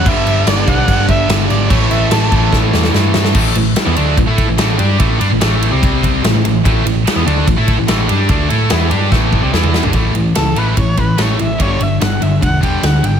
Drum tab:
CC |x-x-x-x-x-x-x-x-|x-x-x-x---------|x---------------|----------------|
RD |----------------|----------------|--x-x-x-x-x-x-x-|x-x-x-x-x-x-x-x-|
SD |----o-------o---|----o---o-ooo-oo|----o-------o---|----o-------o---|
T2 |----------------|----------------|----------------|----------------|
FT |----------------|----------------|----------------|----------------|
BD |o-----o-o-o-----|o-----o-o-------|o-------o-o-----|o-------o-o-----|

CC |----------------|----------------|----------------|----------------|
RD |x-x-x-x-x-x-x-x-|x-x-x-x---------|x-x-x-x-x-x-x-x-|x-x-x-x-x-x-x-x-|
SD |----o-------o---|----o---o---o-o-|----o-------o---|----o-------o---|
T2 |----------------|-------------o--|----------------|----------------|
FT |----------------|---------------o|----------------|----------------|
BD |o-------o-o-----|o-------o-o-----|o-------o-o-----|o-------o-o-----|